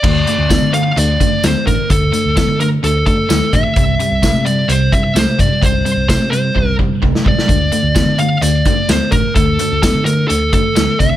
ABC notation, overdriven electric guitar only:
X:1
M:4/4
L:1/8
Q:1/4=129
K:Cmix
V:1 name="Overdriven electric guitar" clef=bass
[D,A,] [D,A,] [D,=B,] [D,A,] [D,A,] [D,A,] [D,B,] [D,A,] | [D,A,] [D,A,] [D,=B,] [D,A,] [D,A,] [D,A,] [D,B,] [D,A,] | [C,G,] [C,G,] [C,A,] [C,G,] [C,G,] [C,G,] [C,A,] [C,G,] | [C,G,] [C,G,] [C,A,] [C,G,] [C,G,] [C,G,] [C,A,] [C,G,] |
[D,A,] [D,A,] [D,=B,] [D,A,] [D,A,] [D,A,] [D,B,] [D,A,] | [D,A,] [D,A,] [D,=B,] [D,A,] [D,A,] [D,A,] [D,B,] [D,A,] |]